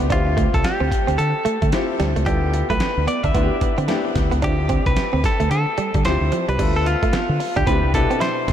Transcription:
Already playing: B2 B3 D4 E4 G4
0.00 C#2
0.10 D2 C4 D4 F4 G4 E5, kick, closed hi-hat
0.27 muted clean electric guitar stroke
0.37 A3, kick, closed hi-hat
0.54 C2 A4, kick, closed hi-hat
0.64 G4, muted fingered electric bass stroke, snare, closed hi-hat
0.80 D2 C4
0.91 muted clean electric guitar stroke, kick, closed hi-hat
1.07 D2 C4, closed hi-hat
1.18 D3 A4, muted clean electric guitar stroke, closed hi-hat
1.45 A3, muted fingered electric bass stroke, closed hi-hat
1.62 D3 A3, kick, closed hi-hat
1.72 C4 E4 F4 G4, muted clean electric guitar stroke, snare, closed hi-hat
2.00 D2 G3, snare, closed hi-hat
2.16 C#2 A3, closed hi-hat
2.26 D2 G3 B3 E4 F4 G4 A4, kick, closed hi-hat
2.54 muted clean electric guitar stroke, closed hi-hat
2.70 B1 A3 B4, kick, closed hi-hat
2.80 muted clean electric guitar stroke, muted fingered electric bass stroke, snare, closed hi-hat
2.97 D2
3.07 B3 D5, closed hi-hat
3.23 D2 D4 E5, kick, closed hi-hat
3.34 D2 B3 D4 E4 F#4, kick, closed hi-hat
3.43 G4
3.61 muted fingered electric bass stroke, muted clean electric guitar stroke, kick, closed hi-hat
3.78 D3 C4, closed hi-hat
3.88 A3 B3 D4 E4 G4, snare, closed hi-hat
4.05 muted clean electric guitar stroke
4.15 D2, kick, snare, closed hi-hat
4.31 C#2 B3, closed hi-hat
4.42 D2 C4 D4 E4 F4 G4, kick, closed hi-hat
4.59 muted clean electric guitar stroke
4.69 C4, kick, closed hi-hat
4.86 C2 B4, kick, closed hi-hat
4.96 muted fingered electric bass stroke, snare, closed hi-hat
5.13 D2 C4
5.24 A4, muted clean electric guitar stroke, kick, snare, closed hi-hat
5.40 D2 A3, closed hi-hat
5.51 D3 A4, muted clean electric guitar stroke, closed hi-hat
5.78 G3, muted fingered electric bass stroke, closed hi-hat
5.94 D3 G3, kick, closed hi-hat
6.05 D2 C4 E4 F4 G4 C5, muted clean electric guitar stroke, snare, closed hi-hat
6.21 D2
6.32 F3, closed hi-hat
6.49 C2 G3 B4, closed hi-hat
6.59 D2 G3 B3 F4 A4 E5, kick, closed hi-hat, crash
6.76 A4
6.86 F4, muted clean electric guitar stroke, closed hi-hat
7.03 A3, kick, closed hi-hat
7.13 B3, muted fingered electric bass stroke, snare, closed hi-hat
7.29 D3
7.40 muted clean electric guitar stroke, open hi-hat
7.56 D2 D4 G4, kick, closed hi-hat
7.67 D2 B3 C4 D4 E4 G4 B4, kick, closed hi-hat
7.83 C2, muted clean electric guitar stroke
7.94 B2 D4 E4 G4 A4, kick, closed hi-hat
8.11 C4, closed hi-hat
8.20 E4 C5, snare, closed hi-hat
8.48 B1, muted clean electric guitar stroke, kick, snare, closed hi-hat

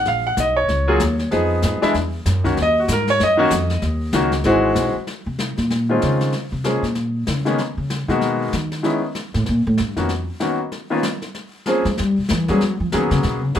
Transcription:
0.05 A#1 F5, brush sweep, snare
0.27 F#5
0.37 B1 D#5, snare, hi-hat pedal
0.57 C#5
0.68 C#2, brush sweep, snare
0.88 F#3 A#3 F4 G#4
1.00 D#2, snare, hi-hat pedal
1.19 snare
1.31 F2 F3 B3 D#4 G#4, brush sweep, snare
1.62 G#2, snare, hi-hat pedal
1.82 E3 G#3 D4 E4, muted upright bass stroke, snare
1.94 E2, brush sweep, snare
2.26 F#2, snare, hi-hat pedal
2.44 D#3 A#3 C#4 F#4, kick, snare
2.57 D#2, brush sweep, snare
2.62 D#5
2.80 F#4
2.88 G#2, snare, hi-hat pedal
2.92 A#4
3.07 C#5, snare
3.20 F#2 D#5, brush sweep, snare
3.37 D#3 A#3 C#4 F#4
3.50 F2, snare, hi-hat pedal
3.70 snare
3.82 D#2, brush sweep, snare
4.13 C#2 D#3 A#3 C#4 F#4, snare, hi-hat pedal
4.32 snare
4.44 G#1 E3 G#3 C4 F#4, brush sweep, snare
4.76 B1, snare, hi-hat pedal
4.95 muted upright bass stroke
5.07 brush sweep, snare
5.26 C3
5.39 snare
5.57 A#2, snare
5.70 brush sweep, snare
5.89 D#3 G#3 C4 C#4 F4
6.02 C#3, snare
6.21 snare
6.32 brush sweep, snare
6.52 C3
6.64 F3 G#3 A#3 C#4 G#4, snare
6.82 A#2, snare
6.95 brush sweep, snare
7.27 C#3, snare
7.45 D#3 G#3 A#3 B3 C#4, snare
7.58 brush sweep, snare
7.77 C#3
7.90 snare
8.08 B2 D#3 G#3 A#3 B3 F#4, snare
8.21 brush sweep, snare
8.53 D#3, snare
8.72 snare
8.83 D#3 G#3 B3 C#4 E4, brush sweep, snare
9.15 snare
9.34 A2, snare
9.46 A#2, brush sweep, snare
9.67 A2
9.78 G2, snare
9.96 F2 D#3 A#3 B3 C#4 F#4, snare
10.09 brush sweep, snare
10.40 D#3 A#3 B3 C#4 F#4, snare
10.72 brush sweep, snare
10.90 D#3 A#3 B3 C#4 F4
11.03 snare
11.22 snare
11.35 brush sweep, snare
11.66 F3 A#3 C4 C#4 G#4, snare
11.85 G#3, snare
11.97 G3, brush sweep, snare
12.18 B2
12.29 E3, snare
12.48 F#3 G3 A#3 B3 C#4 G#4, snare
12.61 F#3, brush sweep, snare
12.80 F3
12.92 D#3 F#3 A#3 B3 C#4 G#4, snare
13.11 C#3, snare
13.23 B2, brush sweep, snare
13.43 C#3
13.55 F3 F#3 A#3 B3 C#4 G#4, snare

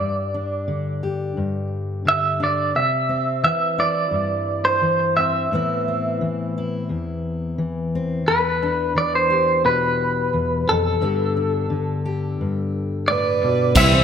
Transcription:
Already playing: D5
0.00 G2
0.34 D4
0.68 D3
1.03 G4
1.37 G2
2.05 D3 E5
2.40 D4 D5
2.75 C3 E5
3.09 C4
3.43 E3 E5
3.78 E4 D5
4.11 G2
4.65 C5
4.82 E3
5.17 C4 E5
5.52 A2 E3 B3 C4 E4
5.88 C4
6.21 E3
6.58 E4
6.89 E2
7.58 E3
7.95 C4
8.27 E2 B4
8.63 D4
8.95 E3 D5
9.15 C5
9.30 G4
9.65 B2 B4
10.33 E2
10.67 F2 A4
11.01 G2 D3 B3 D4 G4
11.37 D4
11.70 D3
12.05 G4
12.41 G2
13.08 A2 B4 D5
13.44 B2
13.75 C2 C3 E3 G3 C4 E4 B4 C5 E5, kick, snare, crash
13.93 G3 C4 E4 B4

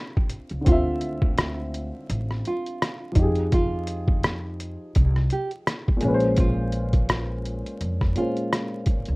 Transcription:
Already playing: D3 C4 F4 E5
0.17 kick
0.29 closed hi-hat
0.49 C#2, closed hi-hat
0.61 D3 C4
0.66 D2 F4, kick, closed hi-hat
0.72 E5
1.01 closed hi-hat
1.22 kick
1.38 cross-stick, closed hi-hat
1.74 closed hi-hat
2.10 A1, closed hi-hat
2.31 cross-stick
2.45 F4, closed hi-hat
2.66 closed hi-hat
2.82 cross-stick, closed hi-hat
3.12 F2 F3 D#4, kick, closed hi-hat
3.19 G4 G#4
3.35 closed hi-hat
3.52 F4, kick, closed hi-hat
3.87 closed hi-hat
4.08 kick
4.23 cross-stick, closed hi-hat
4.60 closed hi-hat
4.95 C2, kick, closed hi-hat
5.16 cross-stick
5.30 G4, closed hi-hat
5.51 closed hi-hat
5.67 cross-stick, closed hi-hat
5.88 kick
5.97 A#2 G#3, closed hi-hat
6.02 A#1 C#4
6.08 B4
6.14 C5
6.20 closed hi-hat
6.37 F4, kick, closed hi-hat
6.72 closed hi-hat
6.93 kick, closed hi-hat
7.09 cross-stick, closed hi-hat
7.45 closed hi-hat
7.66 closed hi-hat
7.81 F2, closed hi-hat
8.01 kick, cross-stick
8.15 A#2 G#3 C#4 F4, closed hi-hat
8.21 C5
8.37 closed hi-hat
8.53 cross-stick, closed hi-hat
8.86 kick, closed hi-hat
9.05 C#2, closed hi-hat

